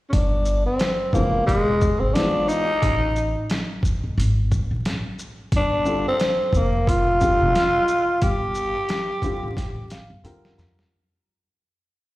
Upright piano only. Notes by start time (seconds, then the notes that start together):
1.13 E3 G#3 B3 D4 F4
2.14 E3 G#3 B3 D4 E4
2.23 F4
5.85 D3 G3 C4 F4 A4
7.21 D3 G3 C4 F4 G4
9.23 D3 G3 C4 F4 G4
9.92 F5
10.24 D3 G3 C4 F4 A#4 G5
10.58 A#5